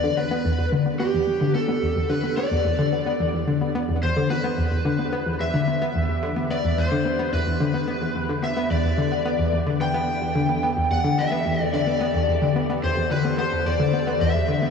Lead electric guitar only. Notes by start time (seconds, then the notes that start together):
Already playing: D5
0.17 B4
1.00 G4
1.55 A4
2.10 B4
2.37 D5
4.03 C5
4.30 B4
5.41 E5
6.51 D5
6.78 C5
7.33 B4
8.44 E5
8.71 D5
9.81 G5
10.91 F#5
11.19 E5
11.63 D5
11.74 D5
12.84 C5
13.11 B4
13.39 C5
13.66 D5
14.21 E5